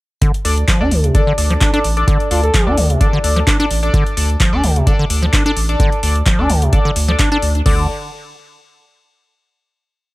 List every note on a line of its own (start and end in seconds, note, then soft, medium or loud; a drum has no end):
0.22 0.32 D3 medium
0.22 kick loud
0.22 closed hi-hat medium
0.34 closed hi-hat soft
0.45 0.64 D2 medium
0.45 0.55 D4 medium
0.45 0.55 A4 medium
0.45 0.55 D5 loud
0.45 open hi-hat loud
0.58 closed hi-hat soft
0.68 0.82 F3 medium
0.68 kick loud
0.68 clap loud
0.68 closed hi-hat medium
0.81 0.89 D2 loud
0.81 0.93 D4 loud
0.81 0.89 D4 medium
0.81 0.89 A4 medium
0.81 0.89 D5 medium
0.91 1.11 D2 medium
0.91 1.05 D3 medium
0.91 open hi-hat medium
1.04 1.16 C3 loud
1.04 closed hi-hat medium
1.15 1.21 D3 loud
1.15 1.30 D4 medium
1.15 1.30 A4 medium
1.15 1.30 D5 medium
1.15 kick loud
1.15 closed hi-hat medium
1.27 1.33 D3 loud
1.38 1.57 D2 medium
1.38 1.71 D4 medium
1.38 1.71 A4 medium
1.38 1.71 D5 medium
1.38 open hi-hat loud
1.50 1.54 F3 medium
1.50 closed hi-hat soft
1.61 1.71 D4 medium
1.61 kick loud
1.61 clap loud
1.61 closed hi-hat medium
1.74 1.80 D4 loud
1.74 1.82 D4 medium
1.74 1.82 A4 medium
1.74 1.82 D5 loud
1.74 closed hi-hat medium
1.84 2.04 A1 medium
1.84 open hi-hat medium
1.97 2.28 D4 medium
1.97 2.28 A4 medium
1.97 2.28 D5 loud
1.97 closed hi-hat soft
2.08 2.18 D3 loud
2.08 kick loud
2.08 closed hi-hat medium
2.20 closed hi-hat soft
2.31 2.50 D2 loud
2.31 2.41 D4 medium
2.31 2.41 F4 medium
2.31 2.41 A4 medium
2.31 2.41 D5 loud
2.31 open hi-hat loud
2.43 2.77 A4 medium
2.43 closed hi-hat soft
2.54 2.68 F3 medium
2.54 kick loud
2.54 clap loud
2.54 closed hi-hat medium
2.67 2.75 D2 medium
2.67 2.75 D4 medium
2.67 2.79 D4 loud
2.67 2.75 A4 medium
2.67 2.75 D5 medium
2.77 2.97 D2 medium
2.77 2.91 D3 medium
2.77 open hi-hat medium
2.90 3.02 C3 loud
2.90 closed hi-hat medium
3.01 3.08 D3 loud
3.01 3.16 D4 medium
3.01 3.16 A4 medium
3.01 3.16 D5 medium
3.01 kick loud
3.01 closed hi-hat medium
3.13 3.19 D3 loud
3.24 3.43 D2 medium
3.24 3.57 D4 medium
3.24 3.57 A4 medium
3.24 3.57 D5 medium
3.24 open hi-hat loud
3.36 3.40 F3 medium
3.36 closed hi-hat soft
3.47 3.58 D4 medium
3.47 kick loud
3.47 clap loud
3.47 closed hi-hat medium
3.60 3.68 D4 medium
3.60 3.66 D4 loud
3.60 3.68 A4 medium
3.60 3.68 D5 loud
3.60 closed hi-hat medium
3.70 3.90 A1 medium
3.70 open hi-hat medium
3.83 4.14 D4 medium
3.83 4.14 A4 medium
3.83 4.14 D5 loud
3.83 closed hi-hat soft
3.94 4.04 D3 loud
3.94 kick loud
3.94 closed hi-hat medium
4.06 closed hi-hat soft
4.17 4.36 D2 loud
4.17 4.27 D4 medium
4.17 4.27 A4 medium
4.17 4.27 D5 loud
4.17 open hi-hat loud
4.30 closed hi-hat soft
4.40 4.54 F3 medium
4.40 kick loud
4.40 clap loud
4.40 closed hi-hat medium
4.53 4.62 D2 medium
4.53 4.61 D4 medium
4.53 4.65 D4 loud
4.53 4.61 A4 medium
4.53 4.61 D5 medium
4.63 4.83 D2 medium
4.63 4.77 D3 medium
4.63 open hi-hat medium
4.76 4.88 C3 loud
4.76 closed hi-hat medium
4.87 4.94 D3 loud
4.87 5.02 D4 medium
4.87 5.02 A4 medium
4.87 5.02 D5 medium
4.87 kick loud
4.87 closed hi-hat medium
4.99 5.05 D3 loud
5.10 5.29 D2 medium
5.10 5.43 D4 medium
5.10 5.43 A4 medium
5.10 5.43 D5 medium
5.10 open hi-hat loud
5.23 5.26 F3 medium
5.23 closed hi-hat soft
5.33 5.44 D4 medium
5.33 kick loud
5.33 clap loud
5.33 closed hi-hat medium
5.46 5.52 D4 loud
5.46 5.54 D4 medium
5.46 5.54 A4 medium
5.46 5.54 D5 loud
5.46 closed hi-hat soft
5.56 5.76 A1 medium
5.56 open hi-hat medium
5.69 6.00 D4 loud
5.69 6.00 A4 medium
5.69 6.00 D5 loud
5.69 closed hi-hat soft
5.80 5.90 D3 loud
5.80 kick loud
5.80 closed hi-hat medium
5.92 closed hi-hat soft
6.03 6.22 D2 medium
6.03 6.13 D4 medium
6.03 6.13 A4 medium
6.03 6.13 D5 loud
6.03 open hi-hat loud
6.16 closed hi-hat soft
6.26 6.40 F3 medium
6.26 kick loud
6.26 clap loud
6.26 closed hi-hat medium
6.39 6.48 D2 loud
6.39 6.51 D4 loud
6.39 6.47 D4 medium
6.39 6.47 A4 medium
6.39 6.47 D5 medium
6.49 6.69 D2 loud
6.49 6.63 D3 medium
6.49 open hi-hat medium
6.62 6.74 C3 loud
6.62 closed hi-hat soft
6.73 6.80 D3 loud
6.73 6.88 D4 medium
6.73 6.88 A4 medium
6.73 6.88 D5 medium
6.73 kick loud
6.73 closed hi-hat medium
6.85 6.91 D3 loud
6.96 7.15 D2 medium
6.96 open hi-hat loud
7.08 7.12 F3 medium
7.08 7.23 D4 medium
7.08 7.23 A4 medium
7.08 7.23 D5 medium
7.08 closed hi-hat soft
7.19 7.30 D4 medium
7.19 kick loud
7.19 clap loud
7.19 closed hi-hat medium
7.32 7.40 D4 medium
7.32 7.38 D4 loud
7.32 7.40 A4 medium
7.32 7.40 D5 loud
7.32 closed hi-hat soft
7.42 7.62 D2 medium
7.42 open hi-hat medium
7.55 closed hi-hat soft
7.66 7.87 D2 medium
7.66 7.87 D3 medium
7.66 7.83 D4 medium
7.66 7.83 A4 medium
7.66 7.83 D5 medium
7.66 kick loud
7.66 crash medium